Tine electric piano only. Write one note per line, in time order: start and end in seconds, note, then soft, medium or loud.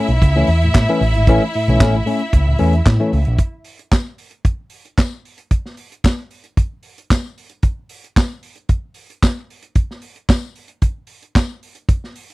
0.36 0.48 E3 medium
0.36 0.48 A3 medium
0.36 0.48 C#4 medium
0.64 0.75 A2 medium
0.89 1.01 E3 medium
0.89 1.01 A3 medium
0.89 1.01 C#4 medium
1.16 1.27 A2 medium
1.28 1.42 E3 medium
1.28 1.42 A3 medium
1.28 1.42 C#4 loud
1.55 1.68 A2 medium
1.69 1.80 E3 medium
1.69 1.80 A3 medium
1.69 1.81 C#4 medium
1.81 1.94 A3 medium
1.81 1.95 C#4 medium
1.95 2.07 A2 medium
2.06 2.20 A3 medium
2.06 2.20 C#4 medium
2.33 2.39 A3 soft
2.33 2.39 C#4 soft
2.47 2.59 A2 soft
2.59 2.73 E3 medium
2.59 2.73 A3 medium
2.59 2.73 C#4 medium
2.86 3.00 A2 medium
3.00 3.12 E3 medium
3.00 3.11 A3 medium
3.00 3.11 C#4 medium